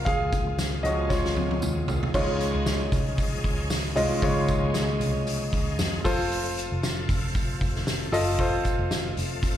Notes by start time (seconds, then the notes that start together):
Already playing: A#2 F3 F4
0.05 C#2 G#3 G#4 F5, kick, closed hi-hat, tambourine
0.32 kick, closed hi-hat, tambourine
0.47 C#2
0.58 snare, closed hi-hat, tambourine
0.83 C#2 F3 G#3 C#4 F#4 D#5, closed hi-hat, tambourine
1.09 F4 C#5, kick, snare, tambourine
1.25 snare
1.36 C#2, high tom, tambourine
1.51 high tom
1.62 D#2, mid tom, tambourine
1.88 C2, floor tom, tambourine
2.03 floor tom
2.14 C#2 C#3 F3 G#3 C#4 D#4 F4 G#4 C#5, kick, crash, tambourine
2.40 hi-hat pedal, open hi-hat, tambourine
2.55 C#2
2.66 snare, hi-hat pedal, open hi-hat, tambourine
2.92 C2, kick, hi-hat pedal, open hi-hat, tambourine
3.18 kick, hi-hat pedal, open hi-hat, tambourine
3.44 C#2, kick, hi-hat pedal, open hi-hat
3.70 snare, hi-hat pedal, open hi-hat, tambourine
3.96 C2 G#3 C#4 D#4 F4 D#5, hi-hat pedal, open hi-hat, tambourine
4.22 C#2 C#3 G#3 C#4 D#4 F4 C#5, kick, hi-hat pedal, open hi-hat, tambourine
4.48 kick, hi-hat pedal, open hi-hat, tambourine
4.63 C#2
4.74 snare, hi-hat pedal, open hi-hat, tambourine
5.00 C2, hi-hat pedal, open hi-hat, tambourine
5.27 hi-hat pedal, open hi-hat, tambourine
5.53 C#2, kick, hi-hat pedal, open hi-hat, tambourine
5.79 F2, snare, hi-hat pedal, open hi-hat, tambourine
6.04 F1 C3 A3 F4 A4 C5, kick, hi-hat pedal, open hi-hat, tambourine
6.32 hi-hat pedal, open hi-hat, tambourine
6.57 hi-hat pedal, open hi-hat, tambourine
6.72 F1
6.83 snare, hi-hat pedal, open hi-hat, tambourine
7.09 F1, kick, hi-hat pedal, open hi-hat, tambourine
7.35 kick, hi-hat pedal, open hi-hat, tambourine
7.61 F1, kick, hi-hat pedal, open hi-hat, tambourine
7.76 snare
7.87 snare, hi-hat pedal, open hi-hat, tambourine
8.12 F#1 F4 A4 D#5, hi-hat pedal, open hi-hat, tambourine
8.39 F1 F4 A4 C5, kick, hi-hat pedal, open hi-hat
8.64 kick, hi-hat pedal, open hi-hat, tambourine
8.79 F1
8.91 snare, hi-hat pedal, open hi-hat, tambourine
9.17 F1, hi-hat pedal, open hi-hat, tambourine
9.43 kick, hi-hat pedal, open hi-hat, tambourine